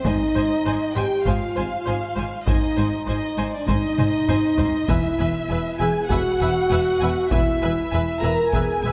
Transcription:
0.03 G#1 G#2 D#4 C5 D#5 G#5, taiko
0.35 G#1 G#2 C5 G#5
0.65 G#1 G#2 C5 G#5
0.95 G#1 G#2 G4 C5 G5 G#5
1.25 G#1 G#2 F4 C5 F5 G#5, taiko
1.56 G#1 G#2 C5 G#5
1.86 G#1 G#2 C5 G#5
2.16 G#1 G#2 C5 G#5
2.46 G#1 G#2 D#4 C5 D#5 G#5, taiko
2.76 G#1 G#2 C5 G#5
3.07 G#1 G#2 D#4 C5 D#5 G#5
3.38 G#1 G#2 C5 G#5
3.53 D4 D5
3.67 G#1 G#2 D#4 C5 D#5 G#5, taiko
3.98 G#1 G#2 C5 G#5, taiko mid
4.28 G#1 G#2 C5 G#5, taiko low-mid
4.58 G#1 G#2 C5 G#5, taiko low
4.88 E1 E2 E4 B4 E5 G#5, taiko
5.18 E1 E2 B4 E5 G#5
5.48 E1 E2 B4 E5 G#5
5.79 E1 E2 G#4 B4 E5 G#5
6.08 E1 E2 F#4 B4 E5 F#5 G#5, taiko
6.39 E1 E2 B4 E5 G#5
6.70 E1 E2 B4 E5 G#5
7.00 E1 E2 B4 E5 G#5
7.31 E1 E2 E4 B4 E5 G#5, taiko
7.62 E1 E2 B4 E5 G#5
7.91 E1 E2 B4 E5 G#5
8.22 E1 E2 A#4 B4 E5 G#5 A#5
8.52 E1 E2 G#4 B4 E5 G#5, taiko
8.82 E1 E2 B4 E5 G#5

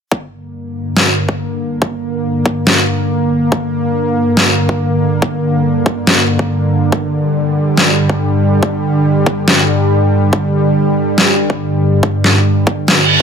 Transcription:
0.12 G2 D3 A#3, kick
0.97 snare
1.29 kick
1.82 kick
2.46 kick
2.67 snare
3.52 kick
4.37 snare
4.69 kick
5.22 kick
5.86 kick
6.07 snare
6.39 kick
6.92 G3, kick
7.78 snare
8.09 kick
8.63 kick
9.26 kick
9.48 snare
10.33 kick
11.18 snare
11.50 kick
12.03 kick
12.24 snare
12.67 kick
12.88 snare, reverse cymbal

